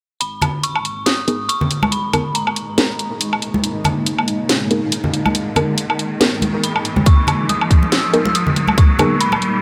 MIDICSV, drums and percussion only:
0, 0, Header, 1, 2, 480
1, 0, Start_track
1, 0, Key_signature, 5, "minor"
1, 0, Tempo, 428571
1, 232, Time_signature, 4, 2, 24, 8
1, 10772, End_track
2, 0, Start_track
2, 0, Title_t, "Drums"
2, 232, Note_on_c, 9, 42, 73
2, 344, Note_off_c, 9, 42, 0
2, 465, Note_on_c, 9, 64, 76
2, 472, Note_on_c, 9, 42, 54
2, 472, Note_on_c, 9, 77, 53
2, 577, Note_off_c, 9, 64, 0
2, 584, Note_off_c, 9, 42, 0
2, 584, Note_off_c, 9, 77, 0
2, 711, Note_on_c, 9, 42, 76
2, 823, Note_off_c, 9, 42, 0
2, 846, Note_on_c, 9, 77, 47
2, 952, Note_on_c, 9, 42, 53
2, 958, Note_off_c, 9, 77, 0
2, 1064, Note_off_c, 9, 42, 0
2, 1191, Note_on_c, 9, 38, 109
2, 1191, Note_on_c, 9, 42, 77
2, 1303, Note_off_c, 9, 38, 0
2, 1303, Note_off_c, 9, 42, 0
2, 1431, Note_on_c, 9, 42, 54
2, 1543, Note_off_c, 9, 42, 0
2, 1671, Note_on_c, 9, 42, 81
2, 1783, Note_off_c, 9, 42, 0
2, 1805, Note_on_c, 9, 64, 79
2, 1911, Note_on_c, 9, 42, 55
2, 1917, Note_off_c, 9, 64, 0
2, 2023, Note_off_c, 9, 42, 0
2, 2045, Note_on_c, 9, 63, 81
2, 2046, Note_on_c, 9, 77, 53
2, 2151, Note_on_c, 9, 42, 77
2, 2157, Note_off_c, 9, 63, 0
2, 2158, Note_off_c, 9, 77, 0
2, 2263, Note_off_c, 9, 42, 0
2, 2390, Note_on_c, 9, 42, 55
2, 2390, Note_on_c, 9, 77, 50
2, 2391, Note_on_c, 9, 64, 68
2, 2502, Note_off_c, 9, 42, 0
2, 2502, Note_off_c, 9, 77, 0
2, 2503, Note_off_c, 9, 64, 0
2, 2631, Note_on_c, 9, 42, 76
2, 2743, Note_off_c, 9, 42, 0
2, 2767, Note_on_c, 9, 77, 49
2, 2871, Note_on_c, 9, 42, 54
2, 2879, Note_off_c, 9, 77, 0
2, 2983, Note_off_c, 9, 42, 0
2, 3112, Note_on_c, 9, 38, 111
2, 3112, Note_on_c, 9, 42, 77
2, 3224, Note_off_c, 9, 38, 0
2, 3224, Note_off_c, 9, 42, 0
2, 3352, Note_on_c, 9, 42, 51
2, 3464, Note_off_c, 9, 42, 0
2, 3592, Note_on_c, 9, 42, 80
2, 3704, Note_off_c, 9, 42, 0
2, 3728, Note_on_c, 9, 77, 49
2, 3832, Note_on_c, 9, 42, 53
2, 3840, Note_off_c, 9, 77, 0
2, 3944, Note_off_c, 9, 42, 0
2, 3968, Note_on_c, 9, 63, 85
2, 4072, Note_on_c, 9, 42, 77
2, 4080, Note_off_c, 9, 63, 0
2, 4184, Note_off_c, 9, 42, 0
2, 4306, Note_on_c, 9, 64, 77
2, 4312, Note_on_c, 9, 42, 53
2, 4312, Note_on_c, 9, 77, 50
2, 4418, Note_off_c, 9, 64, 0
2, 4424, Note_off_c, 9, 42, 0
2, 4424, Note_off_c, 9, 77, 0
2, 4552, Note_on_c, 9, 42, 80
2, 4664, Note_off_c, 9, 42, 0
2, 4687, Note_on_c, 9, 77, 48
2, 4791, Note_on_c, 9, 42, 52
2, 4799, Note_off_c, 9, 77, 0
2, 4903, Note_off_c, 9, 42, 0
2, 5032, Note_on_c, 9, 38, 120
2, 5032, Note_on_c, 9, 42, 78
2, 5144, Note_off_c, 9, 38, 0
2, 5144, Note_off_c, 9, 42, 0
2, 5272, Note_on_c, 9, 42, 52
2, 5384, Note_off_c, 9, 42, 0
2, 5511, Note_on_c, 9, 42, 83
2, 5623, Note_off_c, 9, 42, 0
2, 5643, Note_on_c, 9, 64, 73
2, 5752, Note_on_c, 9, 42, 56
2, 5755, Note_off_c, 9, 64, 0
2, 5864, Note_off_c, 9, 42, 0
2, 5886, Note_on_c, 9, 77, 48
2, 5890, Note_on_c, 9, 63, 99
2, 5990, Note_on_c, 9, 42, 71
2, 5998, Note_off_c, 9, 77, 0
2, 6002, Note_off_c, 9, 63, 0
2, 6102, Note_off_c, 9, 42, 0
2, 6227, Note_on_c, 9, 64, 77
2, 6230, Note_on_c, 9, 42, 54
2, 6230, Note_on_c, 9, 77, 49
2, 6339, Note_off_c, 9, 64, 0
2, 6342, Note_off_c, 9, 42, 0
2, 6342, Note_off_c, 9, 77, 0
2, 6470, Note_on_c, 9, 42, 76
2, 6582, Note_off_c, 9, 42, 0
2, 6606, Note_on_c, 9, 77, 49
2, 6711, Note_on_c, 9, 42, 51
2, 6718, Note_off_c, 9, 77, 0
2, 6823, Note_off_c, 9, 42, 0
2, 6952, Note_on_c, 9, 38, 121
2, 6952, Note_on_c, 9, 42, 73
2, 7064, Note_off_c, 9, 38, 0
2, 7064, Note_off_c, 9, 42, 0
2, 7189, Note_on_c, 9, 63, 86
2, 7193, Note_on_c, 9, 42, 51
2, 7301, Note_off_c, 9, 63, 0
2, 7305, Note_off_c, 9, 42, 0
2, 7432, Note_on_c, 9, 42, 82
2, 7544, Note_off_c, 9, 42, 0
2, 7568, Note_on_c, 9, 77, 50
2, 7672, Note_on_c, 9, 42, 51
2, 7680, Note_off_c, 9, 77, 0
2, 7784, Note_off_c, 9, 42, 0
2, 7799, Note_on_c, 9, 63, 91
2, 7801, Note_on_c, 9, 64, 82
2, 7906, Note_on_c, 9, 62, 45
2, 7910, Note_on_c, 9, 36, 117
2, 7911, Note_off_c, 9, 63, 0
2, 7912, Note_on_c, 9, 42, 69
2, 7913, Note_off_c, 9, 64, 0
2, 8018, Note_off_c, 9, 62, 0
2, 8022, Note_off_c, 9, 36, 0
2, 8024, Note_off_c, 9, 42, 0
2, 8143, Note_on_c, 9, 64, 73
2, 8151, Note_on_c, 9, 42, 53
2, 8151, Note_on_c, 9, 77, 55
2, 8255, Note_off_c, 9, 64, 0
2, 8263, Note_off_c, 9, 42, 0
2, 8263, Note_off_c, 9, 77, 0
2, 8392, Note_on_c, 9, 42, 72
2, 8394, Note_on_c, 9, 62, 64
2, 8504, Note_off_c, 9, 42, 0
2, 8506, Note_off_c, 9, 62, 0
2, 8528, Note_on_c, 9, 77, 48
2, 8630, Note_on_c, 9, 36, 62
2, 8632, Note_on_c, 9, 42, 50
2, 8640, Note_off_c, 9, 77, 0
2, 8742, Note_off_c, 9, 36, 0
2, 8744, Note_off_c, 9, 42, 0
2, 8765, Note_on_c, 9, 62, 47
2, 8871, Note_on_c, 9, 38, 113
2, 8871, Note_on_c, 9, 42, 70
2, 8877, Note_off_c, 9, 62, 0
2, 8983, Note_off_c, 9, 38, 0
2, 8983, Note_off_c, 9, 42, 0
2, 9112, Note_on_c, 9, 42, 47
2, 9224, Note_off_c, 9, 42, 0
2, 9244, Note_on_c, 9, 62, 79
2, 9352, Note_on_c, 9, 42, 80
2, 9356, Note_off_c, 9, 62, 0
2, 9464, Note_off_c, 9, 42, 0
2, 9482, Note_on_c, 9, 64, 76
2, 9591, Note_on_c, 9, 42, 50
2, 9592, Note_on_c, 9, 62, 50
2, 9594, Note_off_c, 9, 64, 0
2, 9703, Note_off_c, 9, 42, 0
2, 9704, Note_off_c, 9, 62, 0
2, 9716, Note_on_c, 9, 63, 84
2, 9726, Note_on_c, 9, 77, 53
2, 9828, Note_off_c, 9, 63, 0
2, 9830, Note_on_c, 9, 36, 118
2, 9832, Note_on_c, 9, 42, 67
2, 9838, Note_off_c, 9, 77, 0
2, 9942, Note_off_c, 9, 36, 0
2, 9944, Note_off_c, 9, 42, 0
2, 10065, Note_on_c, 9, 64, 76
2, 10071, Note_on_c, 9, 62, 72
2, 10072, Note_on_c, 9, 42, 51
2, 10072, Note_on_c, 9, 77, 57
2, 10177, Note_off_c, 9, 64, 0
2, 10183, Note_off_c, 9, 62, 0
2, 10184, Note_off_c, 9, 42, 0
2, 10184, Note_off_c, 9, 77, 0
2, 10310, Note_on_c, 9, 42, 71
2, 10422, Note_off_c, 9, 42, 0
2, 10439, Note_on_c, 9, 62, 55
2, 10445, Note_on_c, 9, 77, 53
2, 10550, Note_on_c, 9, 42, 48
2, 10551, Note_off_c, 9, 62, 0
2, 10557, Note_off_c, 9, 77, 0
2, 10662, Note_off_c, 9, 42, 0
2, 10772, End_track
0, 0, End_of_file